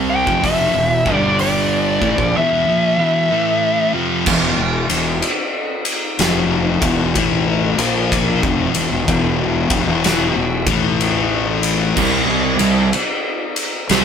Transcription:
0.00 0.23 C2 loud
0.00 0.25 C3 medium
0.00 0.26 G3 loud
0.00 0.26 C4 medium
0.10 0.45 G5 medium
0.26 0.71 F1 medium
0.26 0.73 F2 loud
0.26 0.73 C3 loud
0.26 0.73 F3 medium
0.26 kick loud
0.44 1.13 E5 loud
0.44 kick loud
0.44 open hi-hat medium
0.74 1.04 E1 medium
0.74 1.04 E2 medium
0.74 1.06 B2 medium
1.05 1.98 G1 medium
1.05 2.00 G2 medium
1.05 2.00 D3 medium
1.05 2.00 G3 medium
1.05 kick loud
1.13 1.40 D5 loud
1.39 2.37 D5 medium
1.39 open hi-hat medium
2.00 2.17 A1 loud
2.00 2.17 A2 medium
2.00 2.18 E3 loud
2.00 kick loud
2.18 2.34 A#1 loud
2.18 2.34 A#2 medium
2.18 2.35 F3 loud
2.18 kick loud
2.36 2.65 E2 medium
2.36 2.65 B2 loud
2.36 3.91 E5 medium
2.67 2.96 A#2 medium
2.67 2.96 F3 loud
2.98 3.31 E2 medium
2.98 3.31 B2 loud
2.98 3.30 E3 loud
3.31 3.92 A2 medium
3.31 3.92 E3 loud
3.31 3.92 A3 loud
3.94 4.26 F2 medium
3.94 4.27 C3 medium
3.94 4.27 F3 loud
4.26 4.56 E1 medium
4.26 4.56 E2 loud
4.26 4.57 B2 loud
4.26 kick loud
4.26 crash loud
4.57 4.87 E1 medium
4.57 4.89 E2 medium
4.57 4.88 B2 medium
4.89 5.21 E1 medium
4.89 5.17 E2 medium
4.89 5.17 B2 medium
4.89 ride medium
5.22 ride loud
5.85 ride medium
6.19 6.78 F1 loud
6.19 6.80 F2 loud
6.19 6.80 C3 loud
6.19 6.80 F3 loud
6.19 snare loud
6.19 ride loud
6.81 7.13 E1 loud
6.81 7.14 E2 loud
6.81 7.13 B2 loud
6.81 7.13 E3 loud
6.81 kick loud
6.81 ride medium
7.14 7.74 A1 loud
7.14 7.75 A2 medium
7.14 7.76 E3 loud
7.14 7.76 A3 loud
7.14 kick loud
7.14 ride loud
7.77 8.39 A#1 loud
7.77 8.41 A#2 medium
7.77 8.41 F3 loud
7.77 8.41 A#3 loud
7.77 ride medium
8.12 kick loud
8.12 ride loud
8.43 8.72 F1 loud
8.43 8.72 F2 medium
8.43 8.73 C3 loud
8.43 kick loud
8.74 8.90 E1 medium
8.74 8.90 E2 medium
8.74 8.91 B2 medium
8.74 ride medium
8.91 9.07 E1 medium
8.91 9.06 E2 medium
8.91 9.07 B2 medium
9.07 9.66 E1 loud
9.07 9.68 E2 medium
9.07 9.69 B2 loud
9.07 9.69 E3 loud
9.07 kick loud
9.07 ride loud
9.70 9.86 F1 loud
9.70 9.87 F2 medium
9.70 9.87 C3 loud
9.70 kick loud
9.70 ride medium
9.87 10.32 E1 loud
9.87 10.34 E2 medium
9.87 10.34 B2 medium
9.87 10.34 E3 loud
10.04 snare loud
10.04 ride loud
10.35 10.65 E1 medium
10.35 10.67 E2 medium
10.35 10.67 B2 medium
10.66 11.93 A1 loud
10.66 11.96 A2 loud
10.66 11.97 E3 loud
10.66 11.97 A3 loud
10.66 kick loud
10.66 ride medium
11.01 ride loud
11.63 ride medium
11.97 12.26 C2 loud
11.97 12.27 C3 loud
11.97 12.27 G3 loud
11.97 kick loud
11.97 crash loud
12.28 12.58 C2 medium
12.28 12.59 C3 medium
12.28 12.60 G3 medium
12.59 12.91 C2 medium
12.59 12.87 C3 medium
12.59 12.87 G3 medium
12.59 ride medium
12.93 ride loud
13.56 ride medium
13.89 14.05 C2 loud
13.89 14.05 C3 loud
13.89 14.05 G3 loud
13.89 14.05 C4 loud
13.89 snare loud
13.89 ride loud

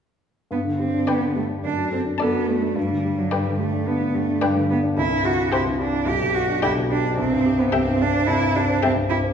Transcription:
0.51 1.06 G2 soft
0.51 0.60 B3 soft
0.64 0.88 D3 soft
0.78 1.11 C4 soft
0.78 1.02 G4 soft
0.94 1.16 D4 soft
1.07 1.62 G2 soft
1.07 1.35 B3 soft
1.07 1.50 B4 soft
1.07 1.49 D5 soft
1.07 1.50 G5 soft
1.21 1.44 D3 soft
1.35 1.44 A3 soft
1.35 1.58 G4 soft
1.49 1.64 D4 soft
1.63 2.18 F#2 soft
1.63 1.92 D4 medium
1.78 2.01 F#3 soft
1.92 2.00 C4 soft
1.92 2.15 A4 soft
2.06 2.28 D4 soft
2.18 2.74 F#2 soft
2.18 2.49 B3 medium
2.18 2.63 A4 soft
2.18 2.62 D5 soft
2.18 2.61 A5 soft
2.34 2.57 F#3 soft
2.47 2.77 A3 soft
2.47 2.70 A4 soft
2.61 2.76 D4 soft
2.76 3.31 G2 soft
2.76 3.20 G3 medium
2.90 3.13 D3 soft
3.04 3.27 G4 soft
3.18 3.33 F#3 soft
3.18 3.41 D4 soft
3.31 3.86 G2 soft
3.31 3.59 G3 medium
3.31 3.74 B4 soft
3.31 3.73 D5 soft
3.31 3.73 G5 soft
3.46 3.68 D3 soft
3.59 3.89 A3 medium
3.59 3.82 G4 soft
3.73 3.96 D4 soft
3.87 4.41 G2 soft
3.87 4.16 B3 medium
4.01 4.23 D3 soft
4.14 4.45 A3 medium
4.14 4.37 G4 soft
4.28 4.51 D4 soft
4.42 4.96 G2 soft
4.42 4.70 G3 medium
4.42 4.83 B4 soft
4.42 4.83 D5 soft
4.42 4.83 G5 soft
4.55 4.78 D3 soft
4.70 4.78 B3 medium
4.70 4.92 G4 soft
4.84 4.97 D4 soft
4.97 5.50 C2 medium
4.97 5.27 E4 medium
5.10 5.33 G2 soft
5.24 5.53 F#4 medium
5.24 5.46 G4 soft
5.38 5.60 E4 soft
5.52 6.06 C2 soft
5.52 5.62 E4 medium
5.52 5.94 G4 soft
5.52 5.94 C5 soft
5.52 5.94 G5 soft
5.66 5.88 G2 soft
5.79 6.10 D4 medium
5.79 6.02 G4 soft
5.93 6.07 E4 soft
6.06 6.62 B1 soft
6.06 6.36 G4 medium
6.21 6.44 B2 soft
6.35 6.62 F#4 medium
6.35 6.58 G4 soft
6.49 6.71 D4 soft
6.62 7.17 B1 soft
6.62 6.71 E4 medium
6.62 7.04 G4 soft
6.62 7.04 D5 soft
6.62 7.04 G5 soft
6.77 6.99 B2 soft
6.90 7.17 D4 medium
6.90 7.12 G4 soft
7.04 7.18 D4 soft
7.17 7.71 C2 medium
7.17 7.62 C4 medium
7.32 7.54 G2 soft
7.46 7.68 G4 soft
7.59 7.75 B3 medium
7.59 7.81 C4 soft
7.72 8.27 C2 soft
7.72 8.03 C4 medium
7.72 8.14 G4 medium
7.72 8.14 E5 medium
7.72 8.14 G5 soft
7.87 8.09 G2 soft
8.00 8.29 D4 medium
8.00 8.23 G4 soft
8.14 8.36 C4 soft
8.27 8.82 C2 soft
8.27 8.58 E4 medium
8.42 8.64 G2 soft
8.55 8.83 D4 medium
8.55 8.77 G4 soft
8.69 8.91 C4 soft
8.83 9.33 C2 soft
8.83 8.91 C4 medium
8.83 9.24 G4 medium
8.83 9.24 E5 medium
8.83 9.24 G5 soft
8.96 9.18 G2 soft
9.10 9.18 E4 medium
9.10 9.32 G4 soft
9.24 9.33 C4 soft

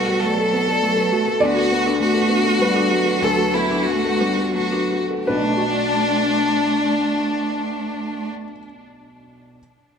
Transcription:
0.00 1.36 B1 medium
0.00 0.28 G3 medium
0.00 1.38 A3 medium
0.00 0.18 B3 medium
0.00 0.26 F#4 medium
0.00 1.12 F#4 medium
0.00 1.39 F#4 medium
0.00 0.08 A4 loud
0.00 1.38 B4 medium
0.08 0.33 A4 medium
0.08 0.20 B4 medium
0.23 0.84 F#3 medium
0.23 0.47 A3 medium
0.23 1.42 A4 medium
0.23 0.35 D5 medium
0.37 0.62 A4 medium
0.37 0.49 A5 medium
0.53 0.77 B3 medium
0.53 0.64 B4 medium
0.68 0.91 A4 medium
0.68 0.79 D5 medium
0.83 1.14 F#3 medium
0.83 1.06 A3 medium
0.97 1.21 A4 medium
0.97 1.07 B4 loud
1.12 1.41 A3 medium
1.12 1.35 F#4 medium
1.12 1.22 A5 medium
1.28 1.42 A4 medium
1.28 1.37 A5 medium
1.40 3.18 D2 medium
1.40 5.24 A3 medium
1.40 1.71 B3 medium
1.40 1.51 D4 loud
1.40 5.23 F#4 medium
1.40 1.99 F#4 medium
1.40 5.24 B4 medium
1.40 2.56 D5 loud
1.57 1.80 A4 medium
1.57 1.66 B4 medium
1.72 1.95 B3 medium
1.72 2.04 B3 medium
1.86 1.96 D4 loud
1.86 2.10 A4 medium
2.00 2.24 A3 medium
2.00 2.63 A3 medium
2.00 3.20 F#4 medium
2.00 2.11 F#4 medium
2.15 2.39 A4 medium
2.15 2.25 B4 medium
2.29 2.54 B3 medium
2.29 2.40 D4 loud
2.44 2.55 F#4 medium
2.44 2.69 A4 medium
2.59 2.94 G3 medium
2.59 2.85 A3 medium
2.59 3.19 B4 loud
2.74 2.85 D4 loud
2.74 3.00 A4 medium
2.90 3.88 F#3 medium
2.90 3.16 F#4 medium
2.90 3.01 B4 medium
3.05 3.23 A4 medium
3.05 3.16 B4 medium
3.22 5.23 D2 medium
3.22 3.33 D4 loud
3.22 3.54 A4 medium
3.22 3.69 A4 loud
3.37 3.64 F#4 medium
3.37 3.48 B4 medium
3.54 3.80 B3 medium
3.54 3.87 E4 medium
3.71 3.81 D4 loud
3.71 3.97 A4 medium
3.86 4.21 A3 medium
3.86 4.14 A3 medium
3.86 3.97 F#4 medium
3.86 4.54 F#4 medium
4.05 4.31 A4 medium
4.05 4.14 B4 medium
4.20 4.54 G3 medium
4.20 4.48 B3 medium
4.20 4.30 D4 medium
4.37 4.47 F#4 medium
4.37 4.65 A4 medium
4.53 5.02 F#3 medium
4.53 4.84 A3 medium
4.53 5.02 F#4 medium
4.72 4.83 D4 medium
4.72 5.02 A4 medium
4.90 5.21 F#4 medium
4.90 5.01 B4 medium
5.08 5.28 A4 medium
5.08 5.19 B4 medium
5.27 8.31 B1 medium
5.27 8.30 A3 medium
5.27 8.30 D4 medium
5.27 8.30 F#4 medium
5.27 8.29 B4 medium
5.27 8.29 D5 medium
5.36 8.37 B2 medium
5.43 8.44 A3 medium
5.49 8.51 D4 medium
5.56 8.58 F#4 medium
5.63 8.65 D5 medium

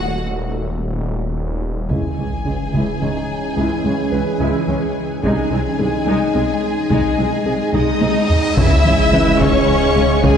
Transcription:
0.00 1.90 D#1 medium
0.00 0.24 F#4 medium
0.00 0.24 F#5 medium
1.90 1.98 C#2 soft
1.90 2.07 C#3 medium
1.90 5.20 E3 soft
1.90 5.19 G#3 soft
1.90 2.16 G#3 soft
1.90 5.20 C#4 soft
1.90 2.16 E4 soft
1.90 5.20 G#4 soft
1.90 5.20 C#5 soft
1.90 5.20 G#5 soft
1.90 taiko soft
1.90 sub drop soft
2.18 2.26 C#2 soft
2.18 2.35 G#3 soft
2.18 2.26 G#3 soft
2.18 2.26 C#4 soft
2.46 2.54 C#2 soft
2.46 2.54 G#3 soft
2.46 2.62 C#4 soft
2.73 2.81 C#2 soft
2.73 2.82 C#2 soft
2.73 2.90 C#3 medium
2.73 3.00 G#3 soft
2.73 2.99 E4 soft
3.01 3.09 C#2 soft
3.01 3.18 E3 soft
3.01 3.09 G#3 soft
3.01 3.09 C#4 soft
3.01 4.64 D#4 soft
3.01 4.64 D#5 soft
3.56 3.64 C#2 medium
3.56 3.65 C#2 medium
3.56 3.73 C#3 medium
3.56 3.83 G#3 soft
3.56 3.83 E4 soft
3.84 3.92 C#2 soft
3.84 3.93 C#2 soft
3.84 4.01 G#3 soft
3.84 3.93 G#3 soft
3.84 3.93 C#4 soft
4.12 4.20 C#2 soft
4.12 4.20 G#3 soft
4.12 4.29 C#4 soft
4.12 5.75 B4 soft
4.40 4.48 C#2 medium
4.40 4.57 C#3 medium
4.40 4.66 G#3 soft
4.40 4.66 E4 medium
4.68 4.76 C#2 soft
4.68 4.85 E3 soft
4.68 4.76 G#3 soft
4.68 4.76 C#4 soft
5.23 5.31 C2 medium
5.23 5.32 C2 medium
5.23 8.25 G#3 medium
5.23 5.49 G#3 soft
5.23 8.56 G#3 medium
5.23 5.40 G#3 medium
5.23 8.25 D#4 medium
5.23 8.57 D#4 medium
5.23 5.49 D#4 medium
5.23 8.53 G#4 medium
5.23 7.70 G#4 medium
5.23 8.57 D#5 medium
5.23 7.70 G#5 medium
5.23 taiko soft
5.51 5.59 C2 soft
5.51 5.60 C2 soft
5.51 5.59 G#3 soft
5.51 5.59 C4 soft
5.51 5.68 D#4 soft
5.79 5.87 C2 soft
5.79 5.87 G#3 soft
5.79 5.96 G#4 soft
6.07 6.15 C2 medium
6.07 6.15 C2 soft
6.07 6.33 G#3 soft
6.07 6.24 G#3 medium
6.07 6.33 D#4 soft
6.35 6.43 C2 soft
6.35 6.43 G#3 soft
6.35 6.43 C4 soft
6.35 6.51 C4 soft
6.90 6.98 C2 soft
6.90 7.07 G#3 medium
6.90 7.16 G#3 soft
6.90 7.16 D#4 soft
6.90 taiko medium
6.90 cymbal swell soft
7.18 7.26 C2 soft
7.18 7.26 G#3 soft
7.18 7.26 C4 soft
7.18 7.35 D#4 medium
7.46 7.54 C2 soft
7.46 7.54 G#3 soft
7.46 7.63 G#4 medium
7.73 7.81 C2 soft
7.73 7.90 G#3 medium
7.73 8.00 G#3 soft
7.73 8.53 D#4 medium
7.73 8.53 D#5 medium
7.73 8.53 D#6 medium
7.73 taiko mid medium
8.01 8.09 C2 soft
8.01 8.10 C2 soft
8.01 8.10 G#3 soft
8.01 8.18 C4 medium
8.01 8.09 C4 soft
8.01 taiko high medium
8.29 taiko low medium
8.56 8.65 C#2 medium
8.56 10.37 C#2 medium
8.56 8.65 C#3 medium
8.56 8.74 C#3 medium
8.56 10.37 C#3 medium
8.56 10.37 G#3 medium
8.56 10.37 C#4 medium
8.56 9.38 E4 medium
8.56 10.37 G#4 medium
8.56 9.40 E5 loud
8.56 10.37 E5 medium
8.56 9.38 E6 loud
8.56 taiko medium
8.56 sub drop medium
8.85 8.93 C#2 medium
8.85 8.93 C#3 medium
8.85 9.02 E3 medium
9.12 9.20 C#2 medium
9.12 9.20 C#3 medium
9.12 9.29 E3 medium
9.12 10.37 B4 medium
9.40 9.48 C#2 medium
9.40 9.48 C#3 medium
9.40 9.57 C#3 loud
9.40 10.24 C#4 medium
9.40 10.24 C#5 medium
9.40 10.24 C#6 medium
9.40 taiko medium
9.95 10.03 C#2 medium
9.95 10.04 C#3 medium
9.95 10.13 G#3 medium
10.23 10.32 C#2 medium
10.23 10.37 C#3 loud
10.23 10.32 C#3 medium
10.23 10.37 G#3 medium
10.23 10.37 G#4 medium
10.23 10.37 G#5 loud
10.23 taiko loud

